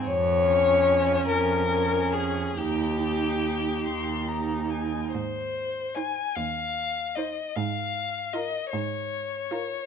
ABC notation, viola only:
X:1
M:6/8
L:1/8
Q:3/8=49
K:Ab
V:1 name="Viola"
z D3 D2 | E E3 E2 | z2 E z2 E | z2 F z2 F |]